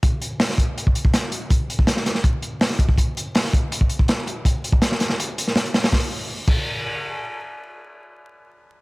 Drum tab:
CC |----------------|----------------|----------------|----------------|
HH |x-x-o-x-x-x-x-x-|x-x-x-x-x-x-o-x-|x-x-o-x-x-x-x-x-|x-x-x-x-x-x-xxoo|
SD |----oo------o---|----oooo----oo--|----oo------o---|----oooo---oo-oo|
BD |o-----o--o-o----|o--o----o-----oo|o-----o--o-o----|o--o------------|

CC |------x---------|----------------|
HH |----------------|----------------|
SD |o---------------|----------------|
BD |o-----o---------|----------------|